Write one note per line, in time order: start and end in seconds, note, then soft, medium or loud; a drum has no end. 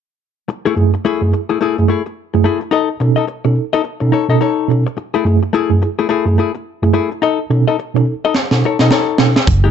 0.48 muted hollow-body jazz guitar stroke soft
0.65 0.75 A3 medium
0.65 0.70 E4 soft
0.65 0.76 E4 medium
0.65 0.76 G#4 medium
0.65 0.70 G#4 soft
0.76 0.90 F#2 medium
0.76 0.90 A3 medium
0.76 0.90 E4 medium
0.76 0.90 G#4 medium
0.76 muted hollow-body jazz guitar stroke soft
0.94 muted hollow-body jazz guitar stroke soft
1.05 1.20 A3 medium
1.05 1.21 E4 medium
1.05 1.21 G#4 loud
1.21 1.30 F#2 medium
1.21 1.30 A3 medium
1.21 1.31 E4 medium
1.21 1.31 G#4 medium
1.33 1.40 E4 soft
1.33 1.40 G#4 soft
1.33 muted hollow-body jazz guitar stroke soft
1.49 1.58 A3 medium
1.49 1.58 E4 medium
1.49 1.58 G#4 medium
1.61 1.76 A3 medium
1.61 1.77 E4 medium
1.61 1.77 G#4 medium
1.78 1.87 F#2 medium
1.78 1.87 A3 medium
1.78 1.87 E4 medium
1.78 1.87 G#4 medium
1.78 muted hollow-body jazz guitar stroke soft
1.88 2.01 A3 medium
1.88 2.01 E4 medium
1.88 2.02 G#4 medium
2.06 muted hollow-body jazz guitar stroke soft
2.34 2.43 F#2 medium
2.34 2.43 A3 medium
2.34 2.43 E4 medium
2.34 2.43 G#4 medium
2.34 muted hollow-body jazz guitar stroke soft
2.44 2.60 A3 medium
2.44 2.61 E4 medium
2.44 2.52 E4 soft
2.44 2.60 G#4 medium
2.44 2.52 G#4 soft
2.61 muted hollow-body jazz guitar stroke soft
2.71 2.88 D#4 medium
2.71 2.88 A4 loud
2.71 2.88 D#5 medium
2.90 2.94 D#4 soft
2.90 2.94 A4 soft
3.00 3.14 B2 medium
3.00 3.14 C#4 medium
3.00 3.14 D#4 medium
3.00 3.14 A4 medium
3.00 muted hollow-body jazz guitar stroke medium
3.16 3.26 D#4 soft
3.16 3.26 A4 medium
3.16 3.25 D#5 medium
3.27 muted hollow-body jazz guitar stroke soft
3.45 3.54 B2 medium
3.45 3.54 C#4 medium
3.45 3.55 D#4 medium
3.45 3.55 A4 medium
3.45 muted hollow-body jazz guitar stroke medium
3.57 3.64 D#4 soft
3.57 3.64 A4 soft
3.73 3.83 D#4 medium
3.73 3.83 A4 medium
3.73 3.84 D#5 medium
3.84 muted hollow-body jazz guitar stroke soft
4.00 4.10 B2 medium
4.00 4.11 C#4 medium
4.00 4.11 D#4 medium
4.00 4.11 A4 medium
4.00 muted hollow-body jazz guitar stroke soft
4.12 4.25 D#4 medium
4.12 4.25 A4 medium
4.12 4.26 C#5 medium
4.29 4.38 B2 medium
4.29 4.38 C#4 medium
4.29 4.39 D#4 medium
4.29 4.39 A4 medium
4.29 4.38 A4 medium
4.29 4.38 D#5 medium
4.41 4.67 D#4 medium
4.41 4.48 D#4 soft
4.41 4.48 A4 soft
4.41 4.68 A4 medium
4.41 4.68 C#5 medium
4.68 4.82 B2 medium
4.68 4.82 C#4 medium
4.68 4.82 D#4 medium
4.68 4.83 A4 medium
4.68 muted hollow-body jazz guitar stroke soft
4.87 muted hollow-body jazz guitar stroke soft
4.97 muted hollow-body jazz guitar stroke soft
5.14 5.25 A3 medium
5.14 5.19 E4 soft
5.14 5.25 E4 medium
5.14 5.19 G#4 soft
5.14 5.25 G#4 medium
5.25 5.39 F#2 medium
5.25 5.39 A3 medium
5.25 5.39 E4 medium
5.25 5.39 G#4 medium
5.25 muted hollow-body jazz guitar stroke soft
5.43 muted hollow-body jazz guitar stroke soft
5.53 5.69 A3 medium
5.53 5.70 E4 medium
5.53 5.70 G#4 medium
5.70 5.79 F#2 medium
5.70 5.79 A3 medium
5.70 5.79 E4 medium
5.70 5.79 G#4 medium
5.81 5.88 E4 soft
5.81 5.88 G#4 soft
5.81 muted hollow-body jazz guitar stroke medium
5.99 6.07 A3 medium
5.99 6.07 E4 medium
5.99 6.07 G#4 medium
6.09 6.25 A3 medium
6.09 6.25 E4 medium
6.09 6.26 G#4 medium
6.26 6.35 F#2 medium
6.26 6.35 A3 medium
6.26 6.35 E4 medium
6.26 6.36 G#4 medium
6.26 muted hollow-body jazz guitar stroke soft
6.38 6.50 A3 medium
6.38 6.51 E4 medium
6.38 6.51 G#4 medium
6.55 muted hollow-body jazz guitar stroke soft
6.83 6.92 F#2 medium
6.83 6.92 A3 medium
6.83 6.92 E4 medium
6.83 6.92 G#4 medium
6.83 muted hollow-body jazz guitar stroke soft
6.93 7.09 A3 medium
6.93 7.01 E4 soft
6.93 7.10 E4 medium
6.93 7.01 G#4 soft
6.93 7.10 G#4 medium
7.11 muted hollow-body jazz guitar stroke soft
7.22 7.38 D#4 medium
7.22 7.38 A4 medium
7.22 7.38 D#5 loud
7.39 7.44 D#4 soft
7.39 7.44 A4 soft
7.50 7.64 B2 medium
7.50 7.64 C#4 medium
7.50 7.64 D#4 medium
7.50 7.64 A4 medium
7.50 muted hollow-body jazz guitar stroke soft
7.68 7.76 D#4 medium
7.68 7.76 A4 medium
7.68 7.76 D#5 medium
7.79 muted hollow-body jazz guitar stroke soft
7.95 8.04 B2 medium
7.95 8.04 C#4 medium
7.95 8.04 D#4 medium
7.95 8.04 A4 medium
7.95 muted hollow-body jazz guitar stroke medium
8.06 8.13 D#4 soft
8.06 8.13 A4 soft
8.25 8.35 D#4 medium
8.25 8.35 A4 medium
8.25 8.35 D#5 medium
8.35 muted hollow-body jazz guitar stroke soft
8.35 snare medium
8.51 8.61 B2 medium
8.51 8.61 C#4 medium
8.51 8.61 D#4 medium
8.51 8.61 A4 medium
8.51 muted hollow-body jazz guitar stroke soft
8.51 snare medium
8.65 8.76 D#4 medium
8.65 8.77 A4 medium
8.65 8.77 C#5 medium
8.79 8.89 B2 medium
8.79 8.89 C#4 medium
8.79 8.89 D#4 medium
8.79 8.89 D#4 soft
8.79 8.89 A4 medium
8.79 8.88 D#5 medium
8.79 snare medium
8.91 9.17 D#4 medium
8.91 9.18 A4 medium
8.91 9.18 C#5 medium
8.91 snare medium
9.18 9.33 B2 medium
9.18 9.33 C#4 medium
9.18 9.33 D#4 medium
9.18 9.33 A4 medium
9.18 muted hollow-body jazz guitar stroke soft
9.18 snare medium
9.36 muted hollow-body jazz guitar stroke soft
9.36 snare loud
9.47 9.68 F#1 loud
9.47 9.61 F#3 medium
9.47 muted hollow-body jazz guitar stroke soft
9.47 kick loud
9.47 closed hi-hat loud
9.64 9.71 A3 medium
9.64 9.71 E4 medium
9.64 9.69 E4 soft
9.64 9.71 G#4 medium
9.64 9.69 G#4 soft